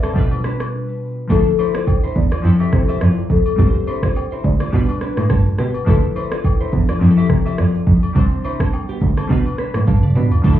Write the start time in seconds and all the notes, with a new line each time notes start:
Already playing: G3 C4 D4 A4 B4 C5 D5 E5 F5
0.03 C4 A4 C5, cross-stick, high agogo, shaker
0.13 B2 G3 D4 F4, kick, shaker
0.18 B4
0.31 high agogo, shaker
0.44 D4 B4, cross-stick, shaker
0.60 cross-stick, high agogo, shaker
1.27 D2 F3 D4 E4 A4, kick, high agogo, shaker
1.32 D4 G#4
1.39 A4
1.46 shaker
1.58 E4 C5, high agogo, shaker
1.75 F4 C5 D5, cross-stick, shaker
1.87 kick, high agogo, low woodblock, shaker
2.03 E4 C5, shaker
2.15 E2 D5, kick, shaker
2.31 F4 D5, cross-stick, high agogo, shaker
2.42 F2 F3 C4 E4, shaker
2.47 A4
2.60 G4 E5, high agogo, shaker
2.73 C3 C5, kick, cross-stick, shaker
2.88 G4 E5, high agogo, shaker
3.01 F2 F4 D5, cross-stick, shaker
3.17 shaker
3.30 F2 A4, kick, shaker
3.46 high agogo, shaker
3.56 C2 G3 C4 D4 G4, kick, high agogo, shaker
3.61 B4
3.68 C5
3.75 shaker
3.87 E4 C5, high agogo, shaker
4.03 F4 C5 D5, kick, cross-stick, shaker
4.16 high agogo, low woodblock, shaker
4.32 E4 C5, shaker
4.43 D2 D5, kick, shaker
4.60 F4 D5, cross-stick, high agogo, shaker
4.70 B2 G3 D4 F4, kick, shaker
4.75 B4
4.89 high agogo, shaker
5.01 D4 B4, cross-stick, shaker
5.17 A2, cross-stick, high agogo, shaker
5.30 G2 D4 A4, kick, cross-stick, shaker
5.46 shaker
5.58 B2 B3 G4 B4, cross-stick, shaker
5.74 high agogo, shaker
5.85 D2 F3 D4 E4 A4, kick, high agogo, shaker
5.90 A4
6.03 shaker
6.15 E4 C5, high agogo, shaker
6.32 F4 D5, cross-stick, shaker
6.44 kick, high agogo, low woodblock, shaker
6.60 E4 C5, shaker
6.72 E2, kick, shaker
6.88 F4 D5, cross-stick, high agogo, shaker
6.99 F2 F3 C4 E4, shaker
7.04 G#4
7.10 A4
7.17 G4 E5, high agogo, shaker
7.30 C3, kick, cross-stick, shaker
7.46 G4 E5, high agogo, shaker
7.58 F2 F4 D5, cross-stick, shaker
7.75 shaker
7.87 F2, kick, shaker
8.03 high agogo, shaker
8.13 C2 G3 C4 D4, kick, high agogo, shaker
8.18 C5
8.32 shaker
8.44 E4 C5, high agogo, shaker
8.60 C4 A4, kick, cross-stick, shaker
8.73 high agogo, low woodblock, shaker
8.89 B3 G4, shaker
9.01 D2, kick, shaker
9.17 C4 A4, cross-stick, high agogo, shaker
9.27 B2 G3 D4 F4, kick, shaker
9.32 B4
9.46 high agogo, shaker
9.58 D4 B4, cross-stick, shaker
9.74 A2, cross-stick, high agogo, shaker
9.87 G2 D4 A4 F5, kick, high tom, shaker
10.03 D5, mid tom, shaker
10.16 B2 D4 B4, mid tom, shaker
10.31 floor tom, high agogo, shaker
10.42 D2 D3 F3 A3 D4 E4 A4, kick, crash, high agogo, shaker
10.46 D4 A4